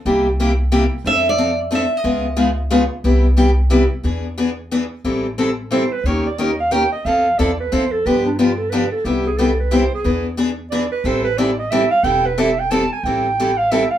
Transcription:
X:1
M:3/4
L:1/16
Q:"Swing" 1/4=180
K:Am
V:1 name="Steel-string acoustic guitar"
z12 | e2 d4 z2 e2 ^d2- | ^d6 z6 | z12 |
z12 | z12 | z12 | z12 |
z12 | z12 | z12 | z12 |
z12 | z12 |]
V:2 name="Clarinet"
z12 | z12 | z12 | z12 |
z12 | z8 c2 B2 | ^c2 d2 ^d2 f2 g2 d2 | f4 d2 B2 c2 A2 |
B2 D2 F2 A2 B2 A2 | G2 ^G2 A2 B2 c2 G2- | ^G2 z6 d2 B2 | c2 B2 d2 ^d2 e2 f2 |
g2 B2 e2 g2 a2 ^g2 | g6 f2 e2 f2 |]
V:3 name="Steel-string acoustic guitar"
[C,G,_B,EG]2 z2 [C,G,B,EG] z3 [C,G,B,EG] z3 | [F,CDA]2 z2 [F,CDA] z3 [F,CDA] z3 | [^C,^G,B,^E^G]2 z2 [C,G,B,EG] z3 [C,G,B,EG] z3 | [C,G,B,EG]2 z2 [C,G,B,EG] z3 [C,G,B,EG] z3 |
[E,B,D^G]2 z2 [E,B,DG] z3 [E,B,DG] z3 | [E,G,CEA]2 z2 [E,G,CEA] z3 [E,G,CEA] z3 | [^D,^A,^CG^A]2 z2 [D,A,CGA] z3 [D,A,CGA] z3 | [F,CEA]2 z2 [F,CEA] z3 [F,CEA] z3 |
[D,F,B,DG]2 z2 [D,F,B,DG] z3 [D,F,B,DG] z3 | [C,G,B,EG]2 z2 [C,G,B,EG] z3 [C,G,B,EG] z3 | [E,B,D^G]2 z2 [E,B,DG] z3 [E,B,DG] z3 | [E,G,CEA]2 z2 [E,G,CEA] z3 [E,G,CEA] z3 |
[E,G,CEA]2 z2 [E,G,CEA] z3 [E,G,CEA] z3 | [E,G,CEA]2 z2 [E,G,CEA] z3 [E,G,CEA] z3 |]
V:4 name="Upright bass" clef=bass
C,,12 | F,,12 | ^C,,12 | C,,12 |
E,,12 | A,,,12 | ^D,,12 | F,,4 E,,4 F,,4 |
G,,12 | C,,12 | E,,12 | A,,,12 |
E,,,12 | A,,,12 |]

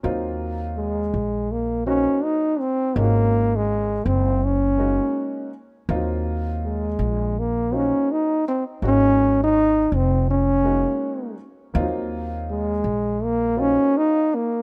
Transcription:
X:1
M:4/4
L:1/16
Q:"Swing 16ths" 1/4=82
K:Ebdor
V:1 name="Upright piano"
[G,B,CEF]4- [G,B,CEF] z4 z [G,B,EGc]4 z2 | [A,B,DEFG]4- [A,B,DEFG] z4 z [A,B,DEG]4 z2 | [F,G,B,CEF]4- [F,G,B,CEF] z4 z [G,B,EFGc]4 z2 | [A,B,DEG]4- [A,B,DEG] z4 z [A,B,DEG]4 z2 |
[F,G,B,CEF]4- [F,G,B,CEF] z4 z [G,B,EFc]4 z2 |]
V:2 name="Trombone"
z4 A,4 B,2 D2 E2 C2 | B,3 A,3 C2 D6 z2 | z4 A,4 B,2 D2 E2 C2 | D3 E3 C2 D6 z2 |
z4 A,4 B,2 D2 E2 B,2 |]
V:3 name="Upright bass" clef=bass
E,,6 B,,,4- B,,, z4 z | A,,,6 G,,,4- G,,, z4 z | E,,6 B,,,4- B,,, z4 z | A,,,6 F,,,4- F,,, z4 z |
E,,6 B,,,4- B,,, z4 z |]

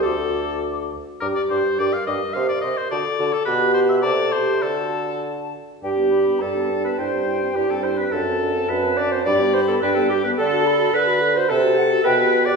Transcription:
X:1
M:2/4
L:1/16
Q:1/4=106
K:Dphr
V:1 name="Flute"
d'6 z2 | d'2 d'2 d'2 d'2 | c'2 c'2 a2 a2 | [K:G] b4 a4 |
a6 z2 | g2 b2 a4 | g8 | a8 |
b4 g4 | a2 b6 | a2 f2 g2 z2 |]
V:2 name="Oboe"
A4 z4 | B d c2 d f e2 | f d e c d3 A | [K:G] B2 c e d2 c2 |
A4 z4 | G4 A3 B | c4 G A c B | A4 B2 d c |
d2 c A B A G B | A4 B3 c | A4 B3 d |]
V:3 name="Clarinet"
^F6 z2 | G2 G2 G2 G2 | G2 G2 ^F2 F2 | [K:G] G4 G4 |
F6 z2 | G4 A3 B | c4 G A c B | A4 B2 d c |
d2 c A B A G B | A4 B3 c | A4 B3 d |]
V:4 name="French horn"
^F6 z2 | G4 B4 | B4 A4 | [K:G] G4 A4 |
F6 z2 | D B, D B, D B, D B, | E C E C E C E C | D C D C D C D C |
D B, D B, D B, D B, | A F A F A F A F | A F A F B G B G |]
V:5 name="Bassoon" clef=bass
D,,6 z2 | G,,2 G,,2 G,,2 G,,2 | C,2 C,2 D,2 D,2 | [K:G] B,,4 C,4 |
D,6 z2 | G,,4 G,,4 | G,,4 G,,4 | F,,4 F,,4 |
G,,4 G,,4 | D,4 D,4 | C,4 B,,4 |]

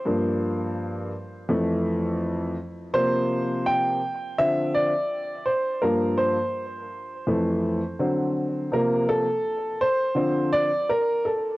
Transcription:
X:1
M:4/4
L:1/8
Q:"Swing 16ths" 1/4=83
K:Gdor
V:1 name="Upright piano"
c6- c z | c2 g2 e d2 c | B c6 z | B A2 c2 d B A |]
V:2 name="Upright piano" clef=bass
[G,,F,B,]3 z [F,,E,A,]3 z | [C,F,B,]3 z [D,F,C] z3 | [G,,F,B,] z3 [F,,E,A,] z [D,^F,C]2 | [C,F,B,] z3 [D,F,C] z3 |]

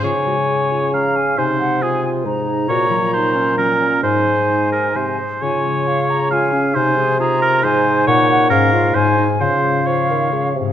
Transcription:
X:1
M:3/4
L:1/8
Q:1/4=134
K:Db
V:1 name="Flute"
a4 b a | a g a a b2- | b6 | a4- a z |
a2 f b a2 | a2 b2 a2 | g g f2 a2 | f4- f z |]
V:2 name="Oboe"
d4 f2 | c2 A z3 | d2 c2 B2 | c3 B c2 |
d4 f2 | c2 A B c2 | d2 B2 c2 | c2 d3 z |]
V:3 name="Clarinet"
F G A F D2 | E2 F2 E2 | G F E D D2 | E4- E z |
F4 F D | E A F2 E2- | E2 D F E E | F4- F z |]
V:4 name="Harp"
[D,A,] A, F A A, A | C, A, E A A, A | B,, G, G d G, d | A,, A, E A A, A |
D, A, F A A, A | C, A, E A A, A | B,, [Gd] A,, [Fd] A,, [Ge] | D, A, F f A, f |]
V:5 name="Bassoon" clef=bass
D,6 | C,4 A,,2 | B,,6 | A,,4 C, z |
D,6 | C,4 A,,2 | B,,2 A,,2 A,,2 | D,2 F, E, D, C, |]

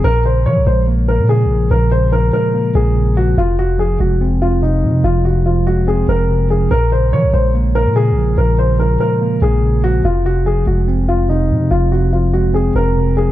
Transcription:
X:1
M:4/4
L:1/16
Q:1/4=144
K:Bbm
V:1 name="Grand piano"
B2 c2 d2 c2 z2 B2 A4 | B2 c2 B2 B4 A4 G2 | F2 G2 A2 G2 z2 F2 E4 | F2 G2 F2 G2 A2 B4 A2 |
B2 c2 d2 c2 z2 B2 A4 | B2 c2 B2 B4 A4 G2 | F2 G2 A2 G2 z2 F2 E4 | F2 G2 F2 G2 A2 B4 A2 |]
V:2 name="Tine electric piano" clef=bass
B,,2 D,2 F,2 A,2 B,2 B,,2 D,2 F,2 | B,,2 D,2 F,2 A,2 B,2 B,,2 D,2 F,2 | F,,2 C,2 F,2 A,2 C2 F,,2 C,2 F,2 | F,,2 C,2 F,2 A,2 C2 F,,2 C,2 F,2 |
B,,2 D,2 F,2 A,2 B,2 B,,2 D,2 F,2 | B,,2 D,2 F,2 A,2 B,2 B,,2 D,2 F,2 | F,,2 C,2 F,2 A,2 C2 F,,2 C,2 F,2 | F,,2 C,2 F,2 A,2 C2 F,,2 C,2 F,2 |]
V:3 name="808-style bass" clef=bass
B,,,4 F, B,,, B,,,4- B,,, B,,2- B,,/2 B,,,2- B,,,/2 | B,,,6 z4 B,,,6 | F,,,6 F,,,8 C,2 | F,,,8- F,,,2 F,,,6 |
B,,,4 F, B,,, B,,,4- B,,, B,,2- B,,/2 B,,,2- B,,,/2 | B,,,6 z4 B,,,6 | F,,,6 F,,,8 C,2 | F,,,8- F,,,2 F,,,6 |]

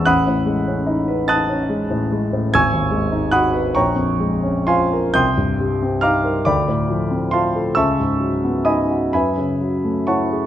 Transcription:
X:1
M:6/8
L:1/16
Q:3/8=47
K:Bmix
V:1 name="Grand piano"
[fbd'f']6 [ad'f'a']6 | [gc'e'g']4 [fbd'f']2 [c=g^ac']4 [=c^e^g=c']2 | [=g=c'_e'=g']4 [=f_b=d'=f']2 [=dg=bd']4 [=cfac']2 | [eac'e']4 [dgbd']2 [Begb]4 [cfac']2 |]
V:2 name="Grand piano" clef=bass
A,,, A,, G, C D B D C G, A,, G, A,, | G,,, D,, G, D F B ^A,,, ^E,, G, C ^E ^A | =C,, =G,, =G, =C _E _B =D,, A,, =F, C =F A | C,, G,, F, B, D F F,, C, F, A, E G |]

